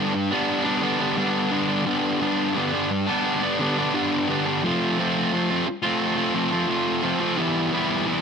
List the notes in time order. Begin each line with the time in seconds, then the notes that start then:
Already playing: G2 D3 B3 D4
0.00 G3
0.14 muted distorted electric guitar stroke
0.30 G3 B3 D4
0.64 G3 B3 D4
0.81 D3 G3 B3 D4
0.99 G3 B3 D4
1.16 G2 D3 G3 B3 D4
1.51 D3 G3 B3 D4
1.68 G3 B3 D4
1.86 G2 D3 G3 B3 D4
2.20 D3 G3 B3 D4
2.55 G2 D3 G3 B3 D4
2.72 G3 B3 D4
2.90 muted distorted electric guitar stroke
3.07 G3 B3 D4
3.42 G3 B3 D4
3.59 D3 G3 B3 D4
3.78 G3 B3 D4
3.93 G2 D3 G3 B3 D4
4.28 D3 G3 B3 D4
4.45 G3 B3 D4
4.64 F3 A3 C4 F4
4.98 F3 A3 C4 F4
5.33 F3 A3 C4 F4
5.50 A3 C4 F4
5.67 muted distorted electric guitar stroke
5.82 A3 C4 F4
6.16 A3 C4 F4
6.34 F3 A3 C4 F4
6.51 A3 C4 F4
6.68 F3 A3 C4 F4
7.03 F3 A3 C4 F4
7.20 A3 C4 F4
7.38 E3 G3 B3 E4
7.72 E3 G3 B3 E4
8.06 E3 G3 B3 E4